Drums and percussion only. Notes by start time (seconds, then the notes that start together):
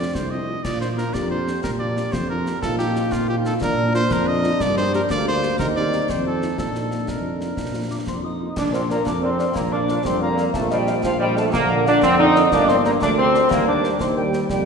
0.15 concert bass drum, snare
0.65 concert bass drum, snare, crash
0.81 snare
0.98 snare
1.15 concert bass drum, snare
1.48 snare
1.64 concert bass drum, snare
1.97 snare
2.13 concert bass drum, snare
2.46 snare
2.63 concert bass drum, snare
2.79 snare
2.96 snare
3.12 concert bass drum, snare
3.45 snare
3.62 concert bass drum, snare
3.94 snare
4.11 concert bass drum, snare
4.44 snare
4.60 concert bass drum, snare, crash
4.77 snare
4.93 snare
5.10 concert bass drum, snare
5.43 snare
5.59 concert bass drum, snare
5.93 snare
6.09 concert bass drum, snare
6.42 snare
6.58 concert bass drum, snare
6.75 snare
6.91 snare
7.08 concert bass drum, snare
7.41 snare
7.57 concert bass drum, snare
8.07 concert bass drum, snare
8.57 concert bass drum, snare, crash
8.74 snare
8.90 snare
9.07 concert bass drum, snare
9.39 snare
9.56 concert bass drum, snare
9.88 snare
10.05 concert bass drum, snare
10.38 snare
10.54 concert bass drum, snare
10.70 snare
10.87 snare
11.04 concert bass drum, snare
11.37 snare
11.54 concert bass drum, snare
11.87 snare
12.03 concert bass drum, snare
12.36 snare
12.52 concert bass drum, snare, crash
12.69 snare
12.85 snare
13.02 concert bass drum, snare
13.35 snare
13.51 concert bass drum, snare
13.84 snare
14.00 concert bass drum, snare
14.33 snare
14.50 concert bass drum, snare